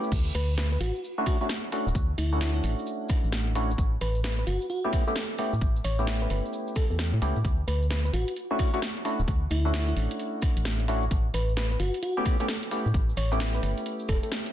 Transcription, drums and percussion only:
0.04 cabasa
0.12 kick, crash, cabasa
0.35 open hi-hat, cabasa
0.49 cabasa
0.58 snare, cabasa
0.72 cabasa
0.81 open hi-hat, cabasa
0.96 cabasa
1.04 cabasa
1.26 kick, cross-stick, open hi-hat, cabasa
1.41 cabasa
1.49 snare, cabasa
1.72 cross-stick, open hi-hat, cabasa
1.87 cabasa
1.95 kick, cabasa
2.18 open hi-hat, cabasa
2.33 cabasa
2.41 snare, cabasa
2.55 cabasa
2.64 open hi-hat, cabasa
2.79 cabasa
2.86 cabasa
3.09 kick, cross-stick, open hi-hat, cabasa
3.24 cabasa
3.32 snare, cabasa
3.55 cross-stick, open hi-hat, cabasa
3.70 cabasa
3.78 kick, cabasa
4.01 open hi-hat, cabasa
4.15 cabasa
4.24 snare, cabasa
4.38 cabasa
4.47 open hi-hat, cabasa
4.61 cabasa
4.70 cabasa
4.93 kick, cross-stick, open hi-hat, cabasa
5.08 cabasa
5.16 snare, cabasa
5.38 cross-stick, open hi-hat, cabasa
5.53 cabasa
5.61 kick, cabasa
5.76 cabasa
5.84 open hi-hat, cabasa
5.98 cabasa
6.07 snare, cabasa
6.21 cabasa
6.30 open hi-hat, cabasa
6.45 cabasa
6.53 cabasa
6.67 cabasa
6.76 kick, cross-stick, open hi-hat, cabasa
6.90 cabasa
6.99 snare, cabasa
7.22 cross-stick, open hi-hat, cabasa
7.36 cabasa
7.44 kick, closed hi-hat, cabasa
7.68 open hi-hat, cabasa
7.82 cabasa
7.91 snare, cabasa
8.05 cabasa
8.13 open hi-hat, cabasa
8.28 closed hi-hat, cabasa
8.36 closed hi-hat, cabasa
8.59 kick, cross-stick, open hi-hat, cabasa
8.73 closed hi-hat, cabasa
8.82 snare, cabasa
8.97 closed hi-hat
9.05 cross-stick, open hi-hat, cabasa
9.19 cabasa
9.28 kick, closed hi-hat, cabasa
9.51 open hi-hat, cabasa
9.66 cabasa
9.74 snare, cabasa
9.88 cabasa
9.97 open hi-hat, cabasa
10.11 closed hi-hat, cabasa
10.20 closed hi-hat, cabasa
10.42 kick, cross-stick, open hi-hat, cabasa
10.57 closed hi-hat, cabasa
10.65 snare, cabasa
10.80 closed hi-hat
10.88 cross-stick, open hi-hat, cabasa
11.02 cabasa
11.11 kick, closed hi-hat, cabasa
11.34 open hi-hat, cabasa
11.48 cabasa
11.57 snare, cabasa
11.71 cabasa
11.80 open hi-hat, cabasa
11.94 closed hi-hat, cabasa
12.02 closed hi-hat, cabasa
12.26 kick, cross-stick, open hi-hat, cabasa
12.39 closed hi-hat, cabasa
12.48 snare, cabasa
12.63 closed hi-hat
12.71 cross-stick, open hi-hat, cabasa
12.86 cabasa
12.94 kick, closed hi-hat, cabasa
13.09 cabasa
13.17 open hi-hat, cabasa
13.31 cabasa
13.40 snare, cabasa
13.55 closed hi-hat, cabasa
13.63 cross-stick, open hi-hat, cabasa
13.77 closed hi-hat, cabasa
13.86 closed hi-hat, cabasa
13.99 cabasa
14.08 kick, cross-stick, open hi-hat, cabasa
14.23 closed hi-hat, cabasa
14.32 snare, cabasa
14.46 closed hi-hat, cabasa

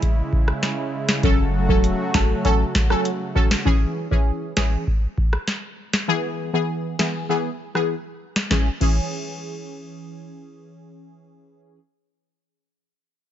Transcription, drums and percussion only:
0.02 kick, closed hi-hat
0.33 kick
0.48 cross-stick
0.63 snare, closed hi-hat
1.09 snare
1.23 kick, closed hi-hat
1.69 kick
1.84 closed hi-hat
2.14 kick, snare
2.45 kick, closed hi-hat
2.75 kick, snare
2.90 cross-stick
3.05 closed hi-hat
3.36 kick
3.51 snare
3.66 kick
4.12 kick
4.57 kick, snare
4.87 kick
5.18 kick
5.33 cross-stick
5.48 snare
5.93 snare
6.99 snare
7.75 cross-stick
8.36 snare
8.51 kick, snare
8.81 kick, crash

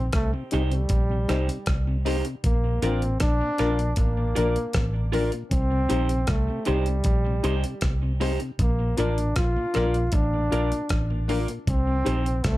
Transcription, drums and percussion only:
0.13 kick, cross-stick, closed hi-hat
0.51 closed hi-hat
0.72 closed hi-hat
0.89 kick, closed hi-hat
1.29 cross-stick, closed hi-hat
1.49 closed hi-hat
1.66 kick, cross-stick, closed hi-hat
2.06 open hi-hat
2.25 closed hi-hat
2.44 kick, closed hi-hat
2.82 closed hi-hat
3.02 closed hi-hat
3.20 kick, cross-stick, closed hi-hat
3.58 cross-stick, closed hi-hat
3.79 closed hi-hat
3.96 kick, closed hi-hat
4.36 closed hi-hat
4.56 closed hi-hat
4.73 kick, cross-stick, closed hi-hat
5.13 open hi-hat
5.32 closed hi-hat
5.51 kick, closed hi-hat
5.90 closed hi-hat
6.09 closed hi-hat
6.27 kick, cross-stick, closed hi-hat
6.65 closed hi-hat
6.86 closed hi-hat
7.04 kick, closed hi-hat
7.44 closed hi-hat
7.64 closed hi-hat
7.81 kick, cross-stick, closed hi-hat
8.21 open hi-hat
8.40 closed hi-hat
8.59 kick, closed hi-hat
8.98 closed hi-hat
9.18 closed hi-hat
9.36 kick, cross-stick, closed hi-hat
9.74 cross-stick, closed hi-hat
9.94 closed hi-hat
10.12 kick, closed hi-hat
10.52 closed hi-hat
10.72 closed hi-hat
10.89 kick, cross-stick, closed hi-hat
11.29 open hi-hat
11.48 closed hi-hat
11.67 kick, closed hi-hat
12.06 closed hi-hat
12.26 closed hi-hat
12.44 kick, cross-stick, closed hi-hat

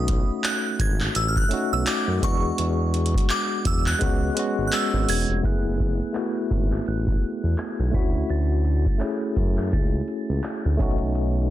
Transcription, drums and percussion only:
0.08 kick, closed hi-hat
0.44 clap, closed hi-hat
0.79 kick, closed hi-hat
1.00 clap
1.15 closed hi-hat
1.36 kick
1.51 closed hi-hat
1.86 clap, closed hi-hat
2.22 kick, closed hi-hat
2.58 closed hi-hat
2.94 closed hi-hat
3.06 closed hi-hat
3.14 kick, closed hi-hat
3.29 clap, closed hi-hat
3.65 kick, closed hi-hat
3.86 clap
4.01 kick, closed hi-hat
4.37 closed hi-hat
4.72 clap, closed hi-hat
5.09 open hi-hat
5.44 kick, closed hi-hat
5.79 kick, closed hi-hat
6.15 clap, closed hi-hat
6.51 kick, closed hi-hat
6.72 clap
6.86 closed hi-hat
7.07 kick
7.22 closed hi-hat
7.58 clap, closed hi-hat
7.94 kick, closed hi-hat
8.29 closed hi-hat
8.65 closed hi-hat
8.86 kick
9.00 clap, closed hi-hat
9.36 kick, closed hi-hat
9.57 clap
9.72 kick, closed hi-hat
10.08 closed hi-hat
10.43 clap, closed hi-hat
10.79 kick, closed hi-hat
11.15 closed hi-hat

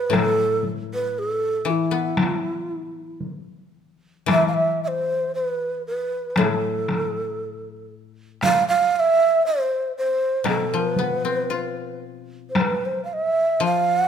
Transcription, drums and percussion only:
0.13 taiko rim, taiko high
0.63 taiko high
2.17 taiko rim, taiko high
3.21 taiko high
4.28 taiko rim, taiko high
6.36 taiko rim, taiko high
6.88 taiko rim, taiko high
8.43 taiko rim, taiko high
10.46 taiko rim, taiko high
10.96 taiko high
12.55 taiko rim, taiko high

